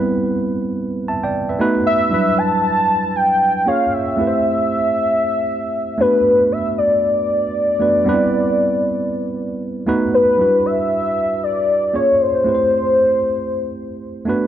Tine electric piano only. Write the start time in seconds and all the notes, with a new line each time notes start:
Already playing: G3 B3 C4 E4 B4
1.08 E5 A5
1.24 D5 G5
1.49 B4 E5
1.59 A3 B3 D#4 F#4 B4
2.10 F#3 G3 D4 E4
2.14 B4
3.66 A#3 C#4 F4 G#4 C#5
4.17 A3 C4 E4 G4
4.21 B4
4.27 C5
5.98 A3 B3 D4 F#4
6.02 B4
7.80 A3 B3 D4 F#4 B4
8.05 G3 B3 C4 D4
8.09 B4
8.14 E4
9.87 A3 B3 D#4 F#4 B4
10.37 F#3 D4 E4 F#4
10.42 G3 B4
11.93 A#3 C#4 F4 G#4 C#5
12.44 A3 C4 E4 G4
12.48 B4
12.55 C5
14.25 A3 B3 D4 F#4
14.29 B4